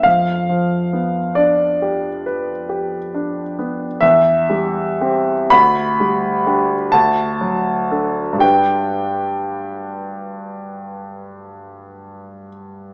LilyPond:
\new Staff \with { instrumentName = "Grand piano" } { \time 9/8 \key g \major \tempo 4. = 41 << { f''4. d''2. | e''4. b''4. a''4. | g''1 r8 | } \\ { f,8 f8 b8 d'8 g'8 b'8 g'8 d'8 b8 | e,8 g8 <c' g'>8 d,8 g8 <d' g'>8 d,8 fis8 <d' a'>8 | <g, g d' b'>1~ <g, g d' b'>8 | } >> }